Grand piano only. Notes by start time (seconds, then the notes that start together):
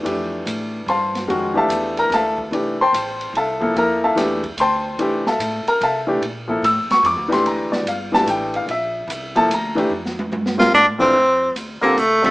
0.03 E3 A3 D4 G4
0.89 C5 F5 A5 C6
1.28 D#3 G#3 C#4 F#4
1.54 E3 A3 D4 G4 A4 E5 F5 A5
1.99 A#4 A#5
2.14 A4 E5 F5 A5
2.52 E3 A3 D4 G4
2.81 C5 G5 A5 C6
3.37 A4 E5 F5 A5
3.61 F3 A#3 E4 A4
3.76 F3 A#3 E4 A4 A#4 A#5
4.04 A4 E5 F5 A5
4.16 E3 A3 D4 G4
4.60 C5 G5 A5 C6
4.99 E3 A3 D4 G4
5.27 A4 E5 F5 A5
5.68 A#4 A#5
5.83 A4 E5 F5 A5
6.07 E3 A3 D4 G4
6.48 F3 A#3 E4 A4
6.65 E6
6.91 C#6
7.06 D6
7.28 E3 A3 D4 G4
7.33 C6
7.47 A#5
7.72 D5
7.88 F5
8.12 E3 A3 D4 G4 A5
8.30 G5
8.56 F5
8.71 E5
9.35 F3 A#3 E4 A4 A5
9.54 A#5
9.75 E3 A3 D4 G4
10.57 G3 C4 F4 A#4
10.98 F2 E3 A3 D4 F4
11.81 D3 G3 C4 F4 A4
12.22 D3 G3 C4 F4 A4